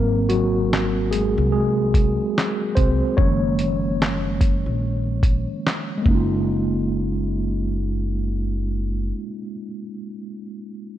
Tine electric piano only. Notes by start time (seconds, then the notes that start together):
Already playing: F#3 A#3 C4 A#4
0.29 F#3 F#4
1.11 G#3 G#4
1.52 G#3 G#4
2.75 C4 C5
3.17 D#3 F3 G#3 A#3 C#4 C#5
5.97 G#3
6.02 A#3
6.06 C#4
6.11 D#4
6.15 F4